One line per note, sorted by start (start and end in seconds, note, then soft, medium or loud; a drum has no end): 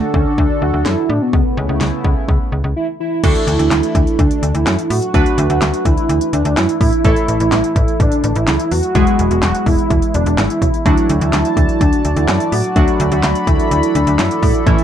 0.00 1.31 D3 medium
0.00 1.31 D4 medium
0.00 1.29 F#4 medium
0.00 1.31 A4 medium
0.14 0.24 D2 loud
0.14 0.28 C#4 medium
0.14 kick medium
0.26 0.64 D4 loud
0.38 0.48 D2 loud
0.38 kick medium
0.62 0.72 D2 medium
0.62 0.88 F#4 loud
0.74 0.84 D2 medium
0.86 0.95 F#2 loud
0.86 1.11 E4 loud
0.86 snare loud
1.09 1.19 A2 loud
1.09 1.23 D4 loud
1.22 1.59 B3 loud
1.33 1.43 C#2 loud
1.33 3.22 C#3 medium
1.33 3.22 A3 medium
1.33 3.22 B3 medium
1.33 3.22 E4 medium
1.33 kick loud
1.57 1.67 C#2 loud
1.57 2.05 C#4 medium
1.69 1.79 C#2 loud
1.81 1.91 C#2 loud
1.81 snare loud
2.04 2.14 C#2 loud
2.04 kick medium
2.29 2.38 C#2 loud
2.29 kick medium
2.52 2.62 C#2 medium
2.64 2.74 C#2 loud
2.76 2.87 E4 loud
3.00 3.22 E4 loud
3.24 3.34 D2 loud
3.24 5.10 A3 medium
3.24 5.10 D4 medium
3.24 4.21 E4 loud
3.24 5.10 F#4 medium
3.24 5.10 A4 medium
3.24 kick loud
3.24 closed hi-hat medium
3.24 crash loud
3.36 closed hi-hat medium
3.47 3.57 D2 loud
3.47 closed hi-hat medium
3.59 3.69 D2 loud
3.59 closed hi-hat soft
3.71 3.81 D2 loud
3.71 snare loud
3.71 clap loud
3.71 closed hi-hat medium
3.83 closed hi-hat medium
3.95 4.05 D2 loud
3.95 kick loud
3.95 closed hi-hat medium
4.07 closed hi-hat soft
4.19 4.29 D2 loud
4.19 4.56 D4 loud
4.19 kick loud
4.19 closed hi-hat medium
4.31 closed hi-hat medium
4.43 4.53 D2 medium
4.43 closed hi-hat medium
4.55 4.64 D2 medium
4.55 4.92 E4 loud
4.55 closed hi-hat soft
4.67 4.76 F#2 loud
4.67 snare loud
4.67 clap loud
4.67 closed hi-hat medium
4.79 closed hi-hat medium
4.90 5.00 A2 loud
4.90 5.49 F#4 loud
4.90 open hi-hat medium
5.02 closed hi-hat soft
5.14 5.24 D2 loud
5.14 7.01 A3 medium
5.14 7.01 D4 medium
5.14 7.01 F#4 medium
5.14 7.01 B4 medium
5.14 kick loud
5.14 closed hi-hat medium
5.26 closed hi-hat medium
5.38 5.48 D2 loud
5.38 closed hi-hat medium
5.50 5.60 D2 loud
5.50 5.87 F#4 loud
5.50 closed hi-hat soft
5.62 5.72 D2 loud
5.62 snare loud
5.62 clap medium
5.62 closed hi-hat medium
5.74 closed hi-hat medium
5.85 5.95 D2 loud
5.85 6.33 E4 loud
5.85 kick loud
5.85 closed hi-hat medium
5.98 closed hi-hat soft
6.09 6.19 D2 loud
6.09 closed hi-hat medium
6.21 closed hi-hat medium
6.33 6.43 D2 loud
6.33 6.59 D4 loud
6.33 closed hi-hat medium
6.45 6.55 D2 loud
6.45 closed hi-hat soft
6.57 6.67 F#2 loud
6.57 6.81 E4 loud
6.57 snare loud
6.57 clap loud
6.57 closed hi-hat medium
6.69 closed hi-hat medium
6.81 6.91 A2 medium
6.81 7.03 E4 loud
6.81 kick loud
6.81 open hi-hat medium
6.93 closed hi-hat soft
7.05 7.15 A1 loud
7.05 8.91 A3 medium
7.05 8.02 E4 loud
7.05 8.91 E4 medium
7.05 8.91 A4 medium
7.05 8.91 C#5 medium
7.05 kick loud
7.05 closed hi-hat medium
7.16 closed hi-hat medium
7.28 7.38 A1 loud
7.28 closed hi-hat medium
7.40 7.50 A1 loud
7.40 closed hi-hat soft
7.52 7.62 A1 loud
7.52 snare loud
7.52 clap medium
7.52 closed hi-hat medium
7.64 closed hi-hat medium
7.76 7.86 A1 loud
7.76 kick loud
7.76 closed hi-hat medium
7.88 closed hi-hat soft
8.00 8.10 A1 loud
8.00 8.37 D4 loud
8.00 kick loud
8.00 closed hi-hat medium
8.12 closed hi-hat medium
8.24 8.34 A1 loud
8.24 closed hi-hat medium
8.36 8.46 A1 loud
8.36 8.73 E4 loud
8.36 closed hi-hat soft
8.47 8.57 C#2 loud
8.47 snare loud
8.47 clap loud
8.47 closed hi-hat medium
8.60 closed hi-hat medium
8.71 8.81 E2 medium
8.71 9.31 F#4 loud
8.71 open hi-hat medium
8.83 closed hi-hat soft
8.95 9.05 E1 loud
8.95 10.82 G#3 medium
8.95 10.82 B3 medium
8.95 10.82 E4 medium
8.95 10.82 G#4 medium
8.95 kick loud
8.95 closed hi-hat medium
9.07 closed hi-hat medium
9.19 9.29 E1 loud
9.19 closed hi-hat medium
9.31 9.41 E1 loud
9.31 9.68 F#4 loud
9.31 closed hi-hat soft
9.43 9.53 E1 loud
9.43 snare loud
9.43 clap medium
9.43 closed hi-hat medium
9.55 closed hi-hat medium
9.66 9.76 E1 loud
9.66 10.14 E4 loud
9.66 kick loud
9.66 open hi-hat medium
9.79 closed hi-hat soft
9.90 10.00 E1 loud
9.90 kick loud
9.90 closed hi-hat medium
10.02 closed hi-hat medium
10.14 10.24 E1 loud
10.14 10.40 D4 loud
10.14 closed hi-hat medium
10.26 10.36 E1 loud
10.26 closed hi-hat soft
10.38 10.48 G#1 medium
10.38 10.85 E4 loud
10.38 snare loud
10.38 clap loud
10.38 closed hi-hat medium
10.50 closed hi-hat medium
10.62 10.72 B1 medium
10.62 kick loud
10.62 closed hi-hat medium
10.74 closed hi-hat soft
10.85 10.96 D2 loud
10.85 12.72 F#3 medium
10.85 12.72 A3 medium
10.85 12.72 D4 medium
10.85 11.83 E4 loud
10.85 14.63 F#4 medium
10.85 12.72 F#4 medium
10.85 14.84 A4 medium
10.85 14.63 D5 medium
10.85 12.74 A5 medium
10.85 kick loud
10.85 closed hi-hat medium
10.97 closed hi-hat medium
11.09 11.19 D2 loud
11.09 closed hi-hat medium
11.21 11.31 D2 loud
11.21 closed hi-hat soft
11.33 11.43 D2 loud
11.33 snare loud
11.33 clap loud
11.33 closed hi-hat medium
11.45 closed hi-hat medium
11.57 11.67 D2 loud
11.57 kick loud
11.57 closed hi-hat medium
11.69 closed hi-hat soft
11.81 11.91 D2 loud
11.81 12.18 D4 loud
11.81 kick loud
11.81 closed hi-hat medium
11.93 closed hi-hat medium
12.05 12.15 D2 medium
12.05 closed hi-hat medium
12.16 12.26 D2 loud
12.16 12.54 E4 loud
12.16 closed hi-hat soft
12.28 12.38 F#2 loud
12.28 snare loud
12.28 clap loud
12.28 closed hi-hat medium
12.40 closed hi-hat medium
12.52 12.62 A2 medium
12.52 13.11 F#4 loud
12.52 open hi-hat medium
12.64 closed hi-hat soft
12.76 12.86 D2 loud
12.76 14.63 F#3 medium
12.76 14.63 A3 medium
12.76 14.63 D4 medium
12.76 14.63 F#4 medium
12.76 14.65 B5 medium
12.76 kick loud
12.76 closed hi-hat medium
12.88 closed hi-hat medium
13.00 13.10 D2 loud
13.00 closed hi-hat medium
13.12 13.22 D2 loud
13.12 13.49 F#4 loud
13.12 closed hi-hat soft
13.23 13.34 D2 loud
13.23 snare loud
13.23 clap loud
13.23 closed hi-hat medium
13.35 closed hi-hat medium
13.47 13.57 D2 loud
13.47 13.96 E4 loud
13.47 kick loud
13.47 closed hi-hat medium
13.60 closed hi-hat soft
13.71 13.81 D2 loud
13.71 closed hi-hat medium
13.83 closed hi-hat medium
13.95 14.05 D2 loud
13.95 14.20 D4 medium
13.95 closed hi-hat medium
14.07 14.17 D2 loud
14.07 closed hi-hat soft
14.19 14.29 F#2 loud
14.19 14.42 E4 loud
14.19 snare loud
14.19 clap loud
14.19 closed hi-hat medium
14.31 closed hi-hat medium
14.43 14.53 A2 loud
14.43 14.84 E4 loud
14.43 kick loud
14.43 open hi-hat medium
14.55 closed hi-hat soft
14.66 14.76 A1 loud
14.66 14.84 E3 medium
14.66 14.84 A3 medium
14.66 14.84 C#4 medium
14.66 14.84 E4 medium
14.66 14.84 C#5 medium
14.66 14.84 A5 loud
14.66 kick loud
14.66 closed hi-hat medium
14.78 closed hi-hat medium